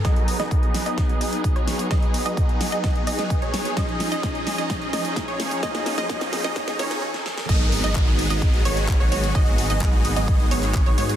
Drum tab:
CC |----------------|----------------|----------------|----------------|
HH |xxoxxxoxxxoxxxox|xxoxxxoxxxoxxxox|xxoxxxoxxxoxxxox|xxoxxxoxxxox----|
CP |----------------|----------------|----------------|----------------|
SD |o--o--o-o-----o-|o-----o-o--o--o-|o-o-o-o-o-o-o-o-|oooooooooooo-ooo|
BD |o---o---o---o---|o---o---o---o---|o---o---o---o---|o---o---o-------|

CC |x---------------|----------------|
HH |xxoxxxoxxxoxxxox|xxoxxxoxxxoxxxox|
CP |----x-------x---|----x------xx---|
SD |----------------|----------------|
BD |o---o---o---o---|o---o---o---o---|